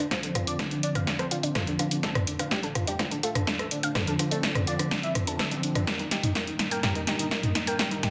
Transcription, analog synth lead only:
0.11 0.17 C5 medium
0.23 0.29 D4 medium
0.35 0.41 D4 medium
0.47 0.53 D5 medium
0.59 0.65 D4 medium
0.71 0.77 D4 medium
0.83 0.89 D5 medium
0.95 1.01 D4 medium
1.07 1.13 D4 medium
1.19 1.25 C5 medium
1.31 1.37 D4 medium
1.43 1.49 D4 medium
1.55 1.61 A4 medium
1.67 1.73 D4 medium
1.79 1.85 D4 medium
1.91 1.98 D4 medium
2.03 2.09 A4 loud
2.15 2.21 D4 medium
2.27 2.33 D4 medium
2.39 2.46 D4 medium
2.51 2.58 G4 medium
2.63 2.70 D4 medium
2.75 2.82 D4 medium
2.87 2.94 G4 loud
2.99 3.06 D4 medium
3.11 3.17 D4 medium
3.23 3.30 A4 medium
3.35 3.42 D4 medium
3.47 3.54 D4 medium
3.59 3.66 A4 medium
3.71 3.78 D4 medium
3.83 3.90 D4 medium
3.95 4.01 A4 medium
4.07 4.13 D4 medium
4.19 4.25 D4 medium
4.31 4.37 A4 medium
4.43 4.49 D4 medium
4.55 4.61 D4 medium
4.67 4.73 D5 medium
4.79 4.85 D4 medium
4.91 4.97 D4 medium
5.03 5.10 E5 medium
5.15 5.22 D4 medium
5.27 5.34 D4 medium
5.39 5.46 E5 medium
5.51 5.58 D4 medium
5.63 5.70 D4 medium
5.75 5.81 D4 medium
5.87 5.94 A#4 medium
6.00 6.06 D#4 medium
6.11 6.18 D#4 medium
6.23 6.30 D#4 medium
6.35 6.42 A#4 medium
6.47 6.54 D#4 medium
6.59 6.65 D#4 medium
6.71 6.78 A#4 medium
6.83 6.90 A#4 medium
6.96 7.02 D#4 medium
7.07 7.14 D#4 medium
7.20 7.26 D#4 medium
7.32 7.38 A#4 medium
7.44 7.50 D#4 medium
7.55 7.62 D#4 medium
7.68 7.74 A#4 medium
7.79 7.86 A#4 loud
7.91 7.98 D#4 medium
8.04 8.10 D#4 medium

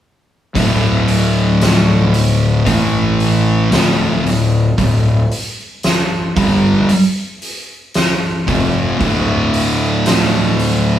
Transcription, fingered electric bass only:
0.55 2.63 D1 medium
2.67 3.68 A1 medium
3.72 4.21 D1 loud
4.25 4.74 D1 medium
4.78 5.27 D1 medium
6.36 6.86 G1 medium
8.48 8.97 F1 medium
9.00 10.99 D1 medium

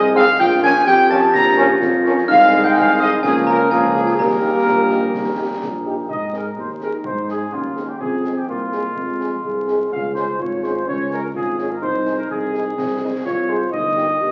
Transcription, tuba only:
0.00 0.32 C2 medium
0.40 0.79 A#1 medium
0.87 1.27 F2 medium
1.34 1.74 A#1 loud
1.81 2.21 F2 medium
2.29 2.69 C2 loud
2.77 3.16 C2 medium
3.24 3.64 C#2 medium
3.72 4.11 C#2 medium
4.19 4.59 D#2 medium
4.66 5.06 A#1 medium
5.14 5.54 D#2 medium
5.62 6.02 A#1 medium
6.09 6.49 G#2 soft
6.57 6.93 D#2 medium
7.05 7.45 G#2 soft
7.53 7.93 D#2 soft
8.00 8.40 F2 medium
8.48 8.88 C2 medium
8.97 9.36 F2 medium
9.44 9.84 C2 soft
9.92 10.32 C#2 medium
10.39 10.79 G#1 medium
10.87 11.27 C#2 soft
11.34 11.74 G#1 medium
11.82 12.22 C2 medium
12.30 12.70 C2 medium
12.78 13.18 C2 medium
13.26 13.65 C2 medium
13.73 14.13 G1 medium
14.21 14.32 G1 medium

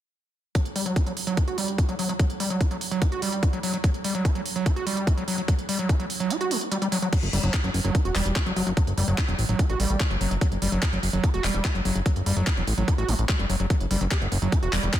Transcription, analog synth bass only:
7.23 7.29 F#1 medium
7.33 7.39 F#1 loud
7.43 7.49 F#1 medium
7.64 7.70 F#1 medium
7.74 7.80 F#1 loud
7.85 7.90 F#1 medium
8.05 8.11 E1 medium
8.15 8.21 E1 loud
8.26 8.32 E1 loud
8.46 8.52 F#1 medium
8.56 8.62 F#1 loud
8.67 8.73 F#1 medium
8.87 8.93 F#1 medium
8.97 9.03 F#1 loud
9.08 9.14 F#1 medium
9.28 9.34 E1 medium
9.39 9.45 A1 loud
9.49 9.55 A1 medium
9.69 9.75 A1 medium
9.80 9.86 A1 loud
9.90 9.96 A1 medium
10.11 10.16 F#1 medium
10.21 10.27 F#1 loud
10.31 10.37 F#1 medium
10.52 10.58 F#1 medium
10.62 10.68 F#1 loud
10.72 10.78 F#1 medium
10.93 10.99 F#1 medium
11.03 11.09 F#1 loud
11.13 11.19 F#1 medium
11.34 11.40 E1 medium
11.44 11.50 E1 loud
11.54 11.60 E1 loud
11.75 11.81 F#1 medium
11.85 11.91 F#1 loud
11.95 12.01 F#1 medium
12.16 12.22 F#1 medium
12.26 12.32 F#1 loud
12.37 12.43 F#1 medium
12.57 12.63 E1 medium
12.67 12.73 A1 loud
12.78 12.84 A1 medium
12.98 13.04 A1 medium
13.08 13.14 A1 loud
13.19 13.25 A1 medium
13.39 13.45 F#1 medium
13.50 13.56 F#1 loud
13.60 13.66 F#1 medium
13.80 13.86 F#1 medium
13.91 13.97 F#1 loud
14.01 14.07 F#1 medium
14.21 14.27 F#1 medium
14.32 14.38 F#1 loud
14.42 14.48 F#1 medium
14.63 14.69 E1 medium
14.73 14.79 E1 loud
14.83 14.89 E1 loud

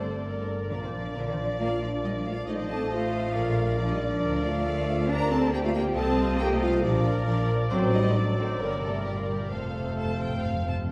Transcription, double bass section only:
0.00 0.70 G1 medium
0.72 2.47 A#1 medium
2.47 3.33 A1 medium
3.35 4.23 A#1 medium
4.24 5.93 D2 medium
5.97 6.82 C2 medium
6.84 7.72 A#1 medium
7.73 8.58 A1 medium
8.60 9.49 G1 medium
9.51 10.92 F1 medium

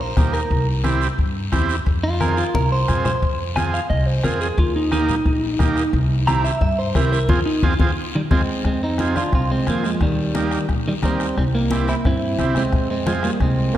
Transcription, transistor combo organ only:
0.17 0.41 A#3 medium
0.17 0.41 D#4 medium
0.17 0.41 G4 medium
0.84 1.08 C4 medium
0.84 1.08 E4 medium
0.84 1.08 G4 loud
1.52 1.76 C4 medium
1.52 1.76 E4 medium
1.52 1.76 G4 loud
2.20 2.44 C4 medium
2.20 2.44 F4 medium
2.20 2.45 G#4 medium
2.88 3.12 C4 medium
2.88 3.12 F4 medium
2.88 3.12 G#4 medium
3.57 3.80 C4 medium
3.57 3.80 F4 medium
3.57 3.80 G#4 medium
4.24 4.48 C4 medium
4.24 4.48 F4 medium
4.24 4.48 G#4 medium
4.91 5.15 A#3 medium
4.91 5.15 D#4 medium
4.91 5.16 G4 medium
5.59 5.83 A#3 medium
5.59 5.83 D#4 medium
5.59 5.84 G4 loud
6.27 6.51 C4 medium
6.27 6.51 E4 medium
6.27 6.51 G4 medium
6.95 7.19 C4 medium
6.95 7.19 E4 medium
6.95 7.20 G4 medium
7.29 7.40 C4 loud
7.29 7.40 F4 loud
7.29 7.40 G#4 loud
7.63 7.74 C4 loud
7.63 7.74 F4 loud
7.63 7.74 G#4 loud
7.81 7.91 C4 loud
7.81 7.91 F4 loud
7.81 7.91 G#4 loud
8.31 8.42 C4 loud
8.31 8.42 F4 loud
8.31 8.42 G#4 loud
9.00 9.23 C4 medium
9.00 9.23 F4 medium
9.00 9.23 G#4 medium
9.67 9.91 C4 medium
9.67 9.91 F4 medium
9.67 9.91 G#4 medium
10.35 10.59 A#3 medium
10.35 10.59 D#4 medium
10.35 10.59 G4 medium
11.03 11.27 A#3 medium
11.03 11.27 D#4 medium
11.03 11.27 G4 medium
11.71 11.95 C4 medium
11.71 11.95 E4 medium
11.71 11.95 G4 medium
12.39 12.63 C4 medium
12.39 12.63 E4 medium
12.39 12.63 G4 medium
13.07 13.31 C4 medium
13.07 13.31 F4 medium
13.07 13.31 G#4 medium

